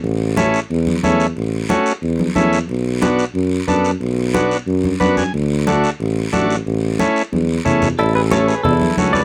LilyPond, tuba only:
\new Staff \with { instrumentName = "Tuba" } { \clef bass \time 4/4 \key a \major \tempo 4 = 181 a,,2 e,4 e,4 | a,,4 r4 e,4 e,4 | b,,2 fis,4 fis,4 | b,,2 fis,4 fis,4 |
d,2 a,,4 a,,4 | a,,4 r4 e,4 e,4 | a,,2 e,4 cis,4 | }